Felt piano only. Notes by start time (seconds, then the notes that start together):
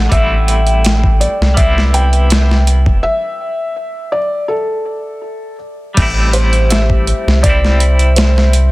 0.12 E5
1.21 D5
1.57 E5
1.94 G5
3.03 E5
4.12 D5
4.48 A4
6.33 C5
6.70 E5
7.43 D5
8.16 C5